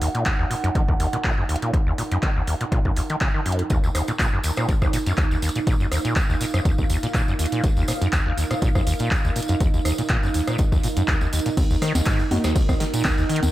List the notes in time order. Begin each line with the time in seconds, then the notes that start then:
Already playing: D#4 A#4 F#5
0.01 D#2, open hi-hat
0.15 A#2, closed hi-hat
0.26 D#2, kick, clap, closed hi-hat
0.39 D#2
0.50 A#2, open hi-hat
0.64 F#2, closed hi-hat
0.75 D#3, kick, closed hi-hat
0.88 D#2, kick
1.00 D#2, open hi-hat
1.13 A#2, closed hi-hat
1.24 A#2, kick, clap
1.38 F#2
1.49 D#2, open hi-hat
1.56 closed hi-hat
1.62 A#2, closed hi-hat
1.73 D#2, kick, closed hi-hat
1.87 D#2
1.98 A#2, open hi-hat
2.12 F#2, closed hi-hat
2.23 D#3, kick, clap, closed hi-hat
2.36 D#2
2.47 D#2, open hi-hat
2.61 A#2, closed hi-hat
2.72 A#2, kick, closed hi-hat
2.85 F#2, kick
2.96 D#2, open hi-hat
3.10 D#3, closed hi-hat
3.21 C#3, kick, clap, closed hi-hat
3.34 D#3
3.46 F#2, open hi-hat
3.52 closed hi-hat
3.59 F2, closed hi-hat
3.70 D#2, kick, closed hi-hat, tambourine
3.84 D#2, tambourine
3.95 D#2, cross-stick, open hi-hat, tambourine
4.08 A#2, closed hi-hat, tambourine
4.19 A#2, kick, clap, closed hi-hat, tambourine
4.33 F#2
4.43 D#2, open hi-hat, tambourine
4.56 A#2, cross-stick, closed hi-hat, tambourine
4.68 D#2, kick, closed hi-hat, tambourine
4.82 D#2 F5, kick, cross-stick, tambourine
4.93 A#2, open hi-hat, tambourine
5.06 F#2, closed hi-hat, tambourine
5.17 D#2, kick, clap, tambourine
5.31 D#2, tambourine
5.42 D#2, open hi-hat, tambourine
5.49 closed hi-hat
5.55 A#2, closed hi-hat, tambourine
5.67 A#2, kick, closed hi-hat, tambourine
5.80 F#2, tambourine
5.92 D#2, cross-stick, open hi-hat, tambourine
6.05 A#2, closed hi-hat, tambourine
6.16 D#2, kick, clap, closed hi-hat, tambourine
6.29 D#2, tambourine
6.41 A#2, open hi-hat, tambourine
6.54 F#2, cross-stick, closed hi-hat, tambourine
6.65 D#2, kick, closed hi-hat, tambourine
6.78 D#2, kick, tambourine
6.90 D#2, open hi-hat, tambourine
7.03 A#2, closed hi-hat, tambourine
7.14 A#2, kick, clap, tambourine
7.28 F#2, tambourine
7.39 D#2, open hi-hat, tambourine
7.46 closed hi-hat
7.52 A#2, closed hi-hat, tambourine
7.64 D#2, kick, closed hi-hat, tambourine
7.77 D#2, tambourine
7.88 A#2, cross-stick, open hi-hat, tambourine
8.02 F#2, closed hi-hat, tambourine
8.13 D#2, kick, clap, closed hi-hat, tambourine
8.26 D#2
8.37 D#2, open hi-hat, tambourine
8.51 A#2, cross-stick, closed hi-hat, tambourine
8.62 A#2, kick, closed hi-hat, tambourine
8.75 F#2, kick, cross-stick, tambourine
8.87 D#2, open hi-hat, tambourine
8.99 A#2, closed hi-hat, tambourine
9.11 D#2, kick, clap, tambourine
9.25 D#2, tambourine
9.36 A#2, open hi-hat, tambourine
9.42 closed hi-hat
9.48 F#2, closed hi-hat, tambourine
9.60 D#2, kick, closed hi-hat, tambourine
9.74 D#2, tambourine
9.85 D#2, cross-stick, open hi-hat, tambourine
9.98 A#2, closed hi-hat, tambourine
10.09 A#2, kick, clap, closed hi-hat, tambourine
10.23 F#2, tambourine
10.34 D#2, open hi-hat, tambourine
10.47 A#2, cross-stick, closed hi-hat, tambourine
10.58 D#2, kick, closed hi-hat, tambourine
10.72 D#2, kick, tambourine
10.83 A#2, open hi-hat, tambourine
10.97 F#2, closed hi-hat, tambourine
11.08 D#2, kick, clap, closed hi-hat, tambourine
11.21 D#2, tambourine
11.33 D#2, open hi-hat, tambourine
11.39 closed hi-hat
11.46 A#2, closed hi-hat, tambourine
11.57 D#2, kick, closed hi-hat, ride, tambourine, high conga
11.71 D#2, tambourine
11.82 D#3, cross-stick, snare, open hi-hat
11.95 D#2, snare, closed hi-hat, tambourine, high conga
12.05 G#2, kick, clap, closed hi-hat, ride, tambourine
12.20 D#2, tambourine
12.24 F#5
12.31 F#2 A#3 D#4 F#4, open hi-hat, high conga
12.44 D#2, cross-stick, snare, closed hi-hat, tambourine
12.56 kick, closed hi-hat, ride, tambourine
12.69 D#2, kick, cross-stick, tambourine, high conga
12.80 D#3, snare, open hi-hat
12.94 A#2, closed hi-hat, tambourine
13.05 D#2, kick, clap, ride, tambourine, high conga
13.18 D#2, tambourine
13.29 D#3, open hi-hat
13.36 closed hi-hat
13.43 D#2, closed hi-hat, tambourine, high conga